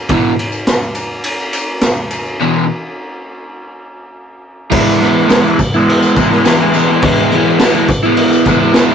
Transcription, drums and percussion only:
0.09 kick, ride
0.39 ride
0.52 tambourine
0.67 snare, ride, tambourine
0.83 tambourine
0.95 ride, tambourine
1.24 ride, tambourine
1.39 tambourine
1.53 ride, tambourine
1.81 snare, ride, tambourine
2.11 ride, tambourine
2.26 tambourine
4.72 kick, crash
4.87 tambourine
5.02 crash
5.29 snare, tambourine, crash
5.44 tambourine
5.59 kick, tambourine, crash
5.73 tambourine
5.89 crash
6.03 tambourine
6.17 kick, tambourine, crash
6.31 snare
6.45 snare, tambourine, crash
6.74 tambourine, crash
6.88 tambourine
7.02 kick, crash
7.18 tambourine
7.32 crash
7.59 snare, tambourine, crash
7.77 tambourine
7.88 kick, tambourine, crash
8.05 tambourine
8.17 crash
8.33 tambourine
8.45 kick, tambourine, crash
8.74 snare, tambourine, crash

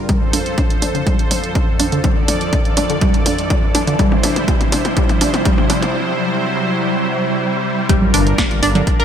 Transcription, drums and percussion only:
0.09 kick, closed hi-hat, mid tom
0.33 open hi-hat, mid tom
0.46 closed hi-hat
0.58 kick, closed hi-hat, mid tom, low conga
0.70 closed hi-hat
0.82 open hi-hat, mid tom
0.95 closed hi-hat
1.07 kick, closed hi-hat, mid tom
1.19 closed hi-hat
1.31 open hi-hat, mid tom, low conga
1.44 closed hi-hat
1.55 kick, closed hi-hat, mid tom
1.80 open hi-hat, mid tom
1.92 closed hi-hat
2.04 kick, closed hi-hat, mid tom, low conga
2.28 open hi-hat, mid tom
2.41 closed hi-hat
2.53 kick, closed hi-hat, mid tom
2.65 closed hi-hat
2.77 open hi-hat, mid tom, low conga
2.90 closed hi-hat
3.01 kick, closed hi-hat, mid tom
3.14 closed hi-hat
3.26 open hi-hat, mid tom
3.38 closed hi-hat
3.50 kick, closed hi-hat, mid tom, low conga
3.75 open hi-hat, mid tom
3.87 closed hi-hat
3.99 kick, closed hi-hat, mid tom
4.12 mid tom
4.23 open hi-hat, mid tom, low conga
4.36 closed hi-hat, mid tom
4.48 kick, closed hi-hat, mid tom
4.61 closed hi-hat, mid tom
4.72 open hi-hat, mid tom
4.85 closed hi-hat, mid tom
4.97 kick, closed hi-hat, mid tom, low conga
5.09 closed hi-hat, mid tom
5.21 open hi-hat, mid tom
5.34 closed hi-hat, mid tom
5.45 kick, closed hi-hat, mid tom
5.58 mid tom
5.70 open hi-hat, mid tom, low conga
5.82 closed hi-hat, mid tom
7.89 kick, closed hi-hat
8.02 low conga
8.14 open hi-hat
8.27 closed hi-hat
8.38 kick, snare, closed hi-hat
8.51 closed hi-hat
8.63 open hi-hat
8.75 closed hi-hat, low conga
8.87 kick, closed hi-hat
9.00 closed hi-hat

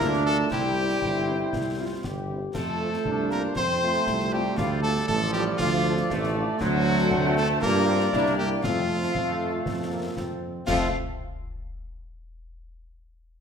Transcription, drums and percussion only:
0.01 concert bass drum, snare
0.13 snare
0.51 concert bass drum, snare, crash
0.89 snare
1.02 concert bass drum
1.53 concert bass drum, snare
2.04 concert bass drum, snare
2.55 concert bass drum, snare, crash
2.93 snare
3.05 concert bass drum
3.31 snare
3.56 concert bass drum, snare
3.94 snare
4.07 concert bass drum, snare
4.20 snare
4.58 concert bass drum, snare, crash
4.96 snare
5.09 concert bass drum
5.59 concert bass drum, snare
5.97 snare
6.10 concert bass drum, snare
6.23 snare
6.61 concert bass drum, snare, crash
6.99 snare
7.11 concert bass drum
7.37 snare
7.62 concert bass drum, snare
8.00 snare
8.13 concert bass drum, snare
8.26 snare
8.64 concert bass drum, snare, crash
9.02 snare
9.15 concert bass drum
9.66 concert bass drum, snare
10.17 concert bass drum, snare
10.67 concert bass drum, snare, crash

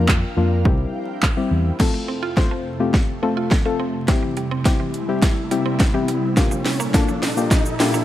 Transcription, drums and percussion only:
0.08 kick, clap
0.65 kick
1.23 kick, clap
1.80 kick, snare, crash
2.37 kick, snare
2.94 kick, snare
3.51 kick, snare
4.08 kick, snare, closed hi-hat
4.37 closed hi-hat
4.65 kick, snare, closed hi-hat
4.94 closed hi-hat
5.22 kick, snare, closed hi-hat
5.51 closed hi-hat
5.80 kick, snare, closed hi-hat
6.08 closed hi-hat
6.37 kick, snare, closed hi-hat, shaker
6.51 shaker
6.65 snare, open hi-hat, shaker
6.80 shaker
6.94 kick, snare, closed hi-hat, shaker
7.08 shaker
7.23 snare, open hi-hat, shaker
7.37 shaker
7.51 kick, snare, closed hi-hat, shaker
7.66 shaker
7.80 snare, open hi-hat, shaker
7.94 shaker

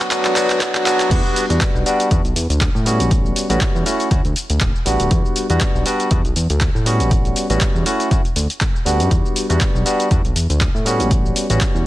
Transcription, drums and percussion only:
0.00 clap, open hi-hat, shaker
0.11 kick, clap, closed hi-hat, shaker
0.25 clap, closed hi-hat, shaker
0.36 clap, open hi-hat, shaker
0.50 clap, closed hi-hat, shaker
0.61 kick, clap, closed hi-hat, shaker
0.75 clap, closed hi-hat, shaker
0.86 clap, open hi-hat, shaker
1.00 clap, closed hi-hat, shaker
1.11 kick, closed hi-hat, crash, shaker
1.26 shaker
1.36 open hi-hat, shaker
1.50 closed hi-hat, shaker
1.61 kick, clap, closed hi-hat, shaker
1.76 shaker
1.86 open hi-hat, shaker
2.00 closed hi-hat, shaker
2.11 kick, closed hi-hat, shaker
2.25 closed hi-hat, shaker
2.36 open hi-hat, shaker
2.50 closed hi-hat, shaker
2.61 kick, clap, closed hi-hat, shaker
2.76 shaker
2.86 open hi-hat, shaker
3.00 closed hi-hat, shaker
3.11 kick, closed hi-hat, shaker
3.26 shaker
3.36 open hi-hat, shaker
3.50 closed hi-hat, shaker
3.61 kick, clap, closed hi-hat, shaker
3.76 shaker
3.86 open hi-hat, shaker
4.00 open hi-hat, shaker
4.11 kick, closed hi-hat, shaker
4.25 closed hi-hat, shaker
4.36 open hi-hat, shaker
4.50 closed hi-hat, shaker
4.61 kick, clap, closed hi-hat, shaker
4.75 shaker
4.86 open hi-hat, shaker
5.00 closed hi-hat, shaker
5.11 kick, closed hi-hat, shaker
5.26 shaker
5.36 open hi-hat, shaker
5.50 closed hi-hat, shaker
5.61 kick, clap, closed hi-hat, shaker
5.75 shaker
5.86 open hi-hat, shaker
6.00 closed hi-hat, shaker
6.11 kick, closed hi-hat, shaker
6.25 closed hi-hat, shaker
6.36 open hi-hat, shaker
6.50 closed hi-hat, shaker
6.61 kick, clap, closed hi-hat, shaker
6.76 shaker
6.86 open hi-hat, shaker
7.00 closed hi-hat, shaker
7.11 kick, closed hi-hat, shaker
7.25 closed hi-hat, shaker
7.36 open hi-hat, shaker
7.50 closed hi-hat, shaker
7.61 kick, clap, closed hi-hat, shaker
7.76 shaker
7.86 open hi-hat, shaker
8.00 open hi-hat, shaker
8.11 kick, closed hi-hat, shaker
8.25 closed hi-hat, shaker
8.36 open hi-hat, shaker
8.50 closed hi-hat, shaker
8.61 kick, clap, closed hi-hat, shaker
8.76 shaker
8.86 open hi-hat, shaker
9.00 closed hi-hat, shaker
9.11 kick, closed hi-hat, shaker
9.26 shaker
9.36 open hi-hat, shaker
9.50 closed hi-hat, shaker
9.61 kick, clap, closed hi-hat, shaker
9.76 shaker
9.86 open hi-hat, shaker
10.00 closed hi-hat, shaker
10.11 kick, closed hi-hat, shaker
10.25 closed hi-hat, shaker
10.36 open hi-hat, shaker
10.50 closed hi-hat, shaker
10.61 kick, clap, closed hi-hat, shaker
10.76 shaker
10.86 open hi-hat, shaker
11.00 closed hi-hat, shaker
11.11 kick, closed hi-hat, shaker
11.26 shaker
11.36 open hi-hat, shaker
11.50 closed hi-hat, shaker
11.61 kick, clap, closed hi-hat, shaker
11.76 shaker

